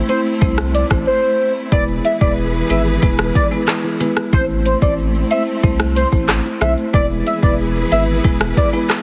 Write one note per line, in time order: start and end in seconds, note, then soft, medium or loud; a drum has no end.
0.00 1.70 A3 medium
0.00 1.70 C4 medium
0.00 6.90 E4 medium
0.09 0.25 A3 medium
0.09 0.25 C4 medium
0.09 0.25 E4 medium
0.09 0.21 C5 medium
0.09 0.25 C5 medium
0.09 closed hi-hat medium
0.09 high bongo medium
0.09 shaker medium
0.25 shaker medium
0.41 0.84 C2 loud
0.41 0.58 A3 loud
0.41 0.58 C4 medium
0.41 0.58 E4 medium
0.41 0.58 C5 loud
0.41 kick loud
0.41 high bongo medium
0.41 shaker medium
0.58 cross-stick loud
0.58 high bongo medium
0.58 shaker medium
0.74 0.86 D5 medium
0.74 closed hi-hat medium
0.74 shaker medium
0.90 1.05 A1 medium
0.90 1.07 A3 medium
0.90 1.07 C4 medium
0.90 1.07 E4 medium
0.90 1.07 C5 medium
0.90 kick medium
0.90 cross-stick medium
0.90 high bongo medium
0.90 shaker medium
1.07 1.53 C5 medium
1.72 2.00 E1 loud
1.72 4.31 E3 medium
1.72 2.17 G#3 loud
1.72 2.17 B3 medium
1.72 2.17 E4 medium
1.72 4.31 G#4 medium
1.72 4.31 B4 loud
1.72 2.17 B4 loud
1.72 1.84 D5 loud
1.72 kick loud
1.72 high bongo medium
1.72 shaker medium
1.88 shaker medium
2.05 2.17 E5 medium
2.05 closed hi-hat medium
2.05 shaker medium
2.21 2.63 E1 medium
2.21 2.37 G#3 medium
2.21 2.37 B3 medium
2.21 2.37 E4 medium
2.21 2.37 B4 medium
2.21 2.33 D5 medium
2.21 kick loud
2.21 shaker medium
2.37 shaker medium
2.54 shaker medium
2.70 2.98 G#1 loud
2.70 2.86 G#3 medium
2.70 2.86 B3 medium
2.70 2.86 E4 medium
2.70 2.86 B4 medium
2.70 2.82 E5 medium
2.70 closed hi-hat medium
2.70 shaker medium
2.86 shaker medium
3.02 3.31 E1 loud
3.02 3.19 G#3 loud
3.02 3.19 B3 medium
3.02 3.19 E4 medium
3.02 3.19 B4 loud
3.02 kick loud
3.02 high bongo medium
3.02 shaker medium
3.19 cross-stick loud
3.19 high bongo medium
3.19 shaker medium
3.35 3.47 D5 medium
3.35 kick medium
3.35 closed hi-hat medium
3.35 shaker medium
3.51 3.68 G#3 medium
3.51 3.68 B3 medium
3.51 3.68 E4 medium
3.51 3.68 B4 medium
3.51 high bongo medium
3.51 shaker medium
3.68 cross-stick loud
3.68 clap loud
3.68 shaker medium
3.84 high bongo medium
3.84 shaker medium
4.00 4.16 G#3 medium
4.00 4.17 B3 medium
4.00 4.17 E4 medium
4.00 4.17 B4 medium
4.00 closed hi-hat medium
4.00 low bongo medium
4.00 shaker medium
4.17 cross-stick loud
4.17 shaker medium
4.33 4.75 A1 loud
4.33 4.78 A3 medium
4.33 6.91 A3 medium
4.33 6.91 C4 medium
4.33 4.78 C4 medium
4.33 4.78 E4 medium
4.33 4.45 C5 loud
4.33 4.78 C5 loud
4.33 kick loud
4.33 high bongo medium
4.33 shaker medium
4.49 shaker soft
4.65 4.78 C5 medium
4.65 closed hi-hat medium
4.65 shaker medium
4.82 5.24 A1 loud
4.82 4.98 A3 medium
4.82 4.98 C4 medium
4.82 4.98 E4 medium
4.82 4.98 C5 medium
4.82 4.94 D5 medium
4.82 kick loud
4.82 shaker loud
4.98 shaker medium
5.15 shaker medium
5.31 5.47 A3 medium
5.31 5.47 C4 medium
5.31 5.47 E4 medium
5.31 5.47 C5 medium
5.31 5.43 E5 medium
5.31 closed hi-hat medium
5.31 shaker medium
5.47 shaker medium
5.63 6.05 C2 loud
5.63 5.79 A3 loud
5.63 5.80 C4 medium
5.63 5.80 E4 medium
5.63 5.80 C5 loud
5.63 kick loud
5.63 high bongo medium
5.63 shaker medium
5.80 cross-stick loud
5.80 high bongo medium
5.80 shaker medium
5.96 6.08 C5 medium
5.96 closed hi-hat medium
5.96 shaker medium
6.12 6.40 A1 loud
6.12 6.28 A3 medium
6.12 6.28 C4 medium
6.12 6.29 E4 medium
6.12 6.29 C5 medium
6.12 kick medium
6.12 high bongo medium
6.12 shaker medium
6.29 cross-stick loud
6.29 clap loud
6.29 shaker medium
6.45 high bongo medium
6.45 shaker medium
6.61 6.75 B1 medium
6.61 6.77 A3 medium
6.61 6.77 C4 medium
6.61 6.77 E4 medium
6.61 6.78 C5 medium
6.61 6.73 E5 medium
6.61 cross-stick loud
6.61 closed hi-hat medium
6.61 low bongo medium
6.61 shaker medium
6.77 shaker medium
6.93 7.22 E1 loud
6.93 9.02 E3 medium
6.93 7.39 G#3 loud
6.93 7.39 B3 medium
6.93 7.39 E4 medium
6.93 9.02 E4 medium
6.93 9.02 G#4 medium
6.93 9.02 B4 medium
6.93 7.39 B4 loud
6.93 7.06 D5 loud
6.93 kick loud
6.93 high bongo medium
6.93 shaker medium
7.10 shaker medium
7.27 7.39 E5 medium
7.27 closed hi-hat medium
7.27 shaker soft
7.42 7.85 E1 medium
7.42 7.59 G#3 medium
7.42 7.59 B3 medium
7.42 7.59 E4 medium
7.42 7.59 B4 medium
7.42 7.55 D5 medium
7.42 kick loud
7.42 shaker medium
7.59 shaker medium
7.76 shaker medium
7.91 8.20 G#1 loud
7.91 8.08 G#3 medium
7.91 8.08 B3 medium
7.91 8.08 E4 medium
7.91 8.08 B4 medium
7.91 8.04 E5 medium
7.91 closed hi-hat medium
7.91 shaker medium
8.08 shaker medium
8.24 8.52 E1 loud
8.24 8.40 G#3 loud
8.24 8.40 B3 medium
8.24 8.41 E4 medium
8.24 8.41 B4 loud
8.24 kick loud
8.24 high bongo medium
8.24 shaker medium
8.40 cross-stick loud
8.40 high bongo medium
8.40 shaker medium
8.57 8.69 D5 medium
8.57 kick loud
8.57 closed hi-hat medium
8.57 shaker medium
8.73 8.89 G#3 medium
8.73 8.89 B3 medium
8.73 8.89 E4 medium
8.73 8.90 B4 medium
8.73 high bongo medium
8.73 shaker medium
8.90 cross-stick loud
8.90 clap loud
8.90 shaker medium